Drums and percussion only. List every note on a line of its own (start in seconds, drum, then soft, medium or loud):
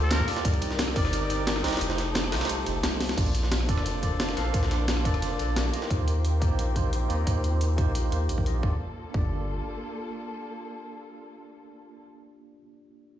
0.11 snare loud
0.11 closed hi-hat loud
0.11 ride medium
0.20 kick medium
0.28 open hi-hat medium
0.28 ride medium
0.37 snare medium
0.45 kick loud
0.45 closed hi-hat loud
0.45 ride medium
0.54 ride soft
0.62 closed hi-hat medium
0.62 ride medium
0.71 snare soft
0.79 snare loud
0.79 closed hi-hat loud
0.79 open hi-hat medium
0.88 cross-stick soft
0.96 kick loud
0.96 open hi-hat medium
0.96 ride medium
1.05 cross-stick soft
1.05 snare soft
1.13 closed hi-hat loud
1.13 ride medium
1.30 closed hi-hat medium
1.30 ride medium
1.47 snare loud
1.47 closed hi-hat loud
1.47 ride medium
1.56 cross-stick soft
1.56 snare medium
1.64 snare medium
1.64 open hi-hat medium
1.68 snare medium
1.68 open hi-hat medium
1.73 snare medium
1.73 open hi-hat medium
1.77 snare medium
1.77 open hi-hat medium
1.81 closed hi-hat loud
1.81 ride medium
1.90 snare medium
1.98 snare medium
1.98 closed hi-hat medium
1.98 ride medium
2.15 snare loud
2.15 closed hi-hat loud
2.15 ride medium
2.24 cross-stick soft
2.32 snare loud
2.32 open hi-hat medium
2.41 cross-stick soft
2.41 snare medium
2.41 open hi-hat medium
2.45 snare medium
2.45 open hi-hat medium
2.49 closed hi-hat loud
2.49 ride medium
2.66 closed hi-hat medium
2.66 ride medium
2.83 snare loud
2.83 closed hi-hat loud
2.83 ride medium
3.00 snare medium
3.00 open hi-hat medium
3.00 ride medium
3.09 snare medium
3.17 kick loud
3.17 closed hi-hat loud
3.17 crash medium
3.17 ride medium
3.26 ride soft
3.35 closed hi-hat medium
3.35 ride medium
3.43 snare soft
3.52 snare loud
3.52 closed hi-hat loud
3.52 open hi-hat medium
3.61 cross-stick soft
3.69 kick loud
3.69 closed hi-hat medium
3.69 ride medium
3.77 cross-stick soft
3.77 snare soft
3.86 closed hi-hat medium
3.86 ride medium
4.03 kick medium
4.03 closed hi-hat medium
4.03 ride medium
4.20 snare loud
4.20 closed hi-hat medium
4.20 ride medium
4.29 cross-stick soft
4.29 snare soft
4.37 snare soft
4.37 closed hi-hat medium
4.37 ride medium
4.54 kick loud
4.54 closed hi-hat medium
4.54 ride medium
4.63 snare medium
4.71 snare medium
4.71 closed hi-hat medium
4.71 ride medium
4.88 snare loud
4.88 closed hi-hat medium
4.88 ride medium
4.97 cross-stick soft
5.05 kick loud
5.05 closed hi-hat medium
5.05 ride medium
5.14 cross-stick soft
5.14 ride soft
5.22 closed hi-hat medium
5.22 ride medium
5.39 closed hi-hat medium
5.39 ride medium
5.56 snare loud
5.56 closed hi-hat medium
5.56 ride medium
5.73 closed hi-hat medium
5.73 ride medium
5.82 snare soft
5.91 kick loud
5.91 closed hi-hat medium
6.08 closed hi-hat medium
6.25 closed hi-hat medium
6.42 kick loud
6.42 closed hi-hat medium
6.59 closed hi-hat medium
6.76 kick medium
6.76 closed hi-hat medium
6.93 closed hi-hat medium
7.10 closed hi-hat medium
7.27 kick loud
7.27 closed hi-hat medium
7.44 closed hi-hat medium
7.61 closed hi-hat medium
7.78 kick loud
7.78 closed hi-hat medium
7.95 closed hi-hat medium
8.12 closed hi-hat medium
8.29 closed hi-hat medium
8.38 kick medium
8.46 closed hi-hat medium
8.63 kick loud
9.14 kick loud